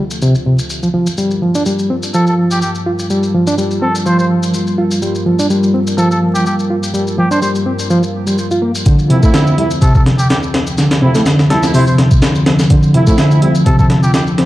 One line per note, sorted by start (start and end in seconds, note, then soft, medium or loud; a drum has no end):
0.00 0.90 D3 medium
0.00 0.90 C4 medium
0.00 8.82 F4 medium
0.11 shaker medium
0.22 0.34 C3 medium
0.22 shaker soft
0.35 shaker soft
0.46 0.58 C3 medium
0.59 shaker medium
0.70 shaker soft
0.83 0.87 F3 medium
0.83 shaker soft
0.94 1.06 F3 medium
0.94 8.82 G3 medium
0.94 8.82 A#4 medium
1.07 shaker medium
1.18 1.41 G3 medium
1.18 shaker soft
1.31 shaker soft
1.42 1.54 F3 medium
1.55 1.62 D4 medium
1.55 shaker medium
1.66 1.89 G3 medium
1.66 shaker soft
1.79 shaker soft
1.90 1.95 C4 medium
2.03 shaker medium
2.14 2.61 F3 medium
2.14 2.23 A4 medium
2.14 shaker soft
2.27 2.34 A4 medium
2.27 shaker soft
2.51 2.58 G4 medium
2.51 shaker medium
2.62 2.70 G4 medium
2.62 shaker soft
2.75 shaker soft
2.86 2.91 F4 medium
2.99 shaker medium
3.10 3.33 G3 medium
3.10 shaker soft
3.23 shaker soft
3.34 3.47 F3 medium
3.47 3.54 D4 medium
3.47 shaker medium
3.58 3.81 G3 medium
3.58 shaker soft
3.71 shaker soft
3.82 3.87 C4 medium
3.82 3.96 A4 medium
3.95 shaker medium
4.06 4.53 F3 loud
4.06 4.14 C5 medium
4.06 shaker soft
4.19 4.26 C5 medium
4.19 shaker soft
4.43 shaker medium
4.54 shaker soft
4.67 shaker soft
4.78 4.83 F4 medium
4.91 shaker medium
5.02 5.25 G3 medium
5.02 shaker soft
5.15 shaker soft
5.26 5.39 F3 medium
5.39 5.46 D4 medium
5.39 shaker medium
5.50 5.73 G3 medium
5.50 shaker soft
5.63 shaker soft
5.74 5.79 C4 medium
5.87 shaker medium
5.98 6.45 F3 medium
5.98 6.06 A4 medium
5.98 shaker soft
6.11 6.18 A4 medium
6.11 shaker soft
6.35 6.42 G4 medium
6.35 shaker medium
6.46 6.55 G4 medium
6.46 shaker soft
6.59 shaker soft
6.70 6.75 F4 medium
6.83 shaker medium
6.94 7.17 G3 medium
6.94 shaker medium
7.07 shaker soft
7.18 7.31 F3 medium
7.18 7.29 G4 medium
7.31 7.38 D4 loud
7.31 7.38 C5 medium
7.31 shaker medium
7.42 7.65 G3 medium
7.42 7.51 C5 medium
7.42 shaker soft
7.55 shaker soft
7.66 7.71 C4 medium
7.79 shaker medium
7.90 8.02 F3 medium
7.90 shaker medium
8.03 shaker soft
8.27 8.37 G3 medium
8.27 shaker medium
8.38 shaker medium
8.51 8.61 F4 medium
8.51 shaker soft
8.62 8.70 A#3 medium
8.75 shaker medium
8.85 14.45 D3 medium
8.85 9.09 D3 medium
8.85 14.45 F3 medium
8.85 14.45 C4 medium
8.85 kick loud
8.85 closed hi-hat medium
8.85 shaker medium
8.99 shaker soft
9.10 9.22 C3 medium
9.10 9.20 F3 medium
9.10 9.20 A3 medium
9.10 9.20 C4 medium
9.10 9.20 E4 medium
9.10 closed hi-hat medium
9.23 9.55 F3 medium
9.23 9.55 A3 medium
9.23 9.30 A3 loud
9.23 9.55 C4 medium
9.23 9.55 E4 loud
9.23 kick medium
9.23 shaker medium
9.34 9.57 D3 medium
9.34 snare loud
9.34 closed hi-hat medium
9.34 shaker medium
9.47 shaker soft
9.58 9.68 F3 medium
9.58 9.63 G3 medium
9.58 9.68 A3 medium
9.58 9.68 C4 medium
9.58 9.68 E4 loud
9.58 closed hi-hat medium
9.71 shaker medium
9.82 10.29 C3 loud
9.82 9.90 A4 medium
9.82 kick loud
9.82 closed hi-hat medium
9.82 shaker medium
9.95 10.02 A4 medium
9.95 kick loud
9.95 shaker soft
10.06 snare medium
10.06 closed hi-hat medium
10.18 10.26 G4 medium
10.18 shaker medium
10.30 10.38 G4 medium
10.30 snare loud
10.30 closed hi-hat medium
10.30 shaker medium
10.43 shaker soft
10.54 10.59 C4 medium
10.54 snare loud
10.54 closed hi-hat medium
10.67 shaker medium
10.78 11.01 D3 medium
10.78 snare soft
10.78 closed hi-hat medium
10.78 shaker medium
10.91 snare loud
10.91 closed hi-hat medium
10.91 shaker soft
11.02 11.14 C3 medium
11.02 11.12 F3 medium
11.02 11.12 A3 medium
11.02 11.12 C4 medium
11.02 11.12 E4 loud
11.15 11.24 F3 medium
11.15 11.22 A3 loud
11.15 11.24 A3 medium
11.15 11.24 C4 medium
11.15 11.24 E4 medium
11.15 snare soft
11.15 closed hi-hat medium
11.15 shaker medium
11.26 11.49 D3 medium
11.26 snare loud
11.26 closed hi-hat medium
11.26 shaker medium
11.39 snare soft
11.39 shaker soft
11.50 11.72 F3 medium
11.50 11.55 G3 medium
11.50 11.71 A3 medium
11.50 11.72 C4 medium
11.50 11.72 E4 medium
11.50 11.64 A4 medium
11.50 snare medium
11.50 closed hi-hat medium
11.63 snare soft
11.63 shaker medium
11.74 12.21 C3 loud
11.74 11.84 F3 medium
11.74 11.84 A3 medium
11.74 11.84 C4 medium
11.74 11.84 E4 loud
11.74 11.83 C5 medium
11.74 open hi-hat medium
11.74 shaker medium
11.87 11.94 C5 medium
11.87 shaker soft
11.98 snare medium
11.98 closed hi-hat medium
12.11 kick medium
12.11 shaker medium
12.22 snare loud
12.22 closed hi-hat medium
12.22 shaker medium
12.35 shaker soft
12.46 12.51 C4 medium
12.46 snare loud
12.46 closed hi-hat medium
12.59 snare soft
12.59 shaker medium
12.70 12.93 D3 medium
12.70 kick loud
12.70 closed hi-hat medium
12.70 shaker medium
12.83 shaker soft
12.94 13.07 C3 medium
12.94 13.04 F3 medium
12.94 13.04 A3 medium
12.94 13.04 C4 medium
12.94 13.04 E4 medium
12.94 closed hi-hat medium
13.07 13.40 F3 loud
13.07 13.14 A3 loud
13.07 13.40 A3 medium
13.07 13.40 C4 medium
13.07 13.40 E4 loud
13.07 kick loud
13.07 shaker medium
13.18 13.41 D3 medium
13.18 snare loud
13.18 closed hi-hat medium
13.18 shaker medium
13.31 shaker soft
13.42 13.52 F3 medium
13.42 13.47 G3 medium
13.42 13.52 A3 medium
13.42 13.52 C4 medium
13.42 13.52 E4 loud
13.42 closed hi-hat medium
13.55 shaker medium
13.66 14.13 C3 loud
13.66 13.74 A4 medium
13.66 kick loud
13.66 closed hi-hat medium
13.66 shaker medium
13.79 13.86 A4 medium
13.79 kick medium
13.79 shaker soft
13.90 snare medium
13.90 closed hi-hat medium
14.03 14.10 G4 medium
14.03 shaker medium
14.14 14.22 G4 medium
14.14 snare loud
14.14 closed hi-hat medium
14.14 shaker medium
14.27 shaker soft
14.38 14.43 C4 medium
14.38 snare soft
14.38 closed hi-hat medium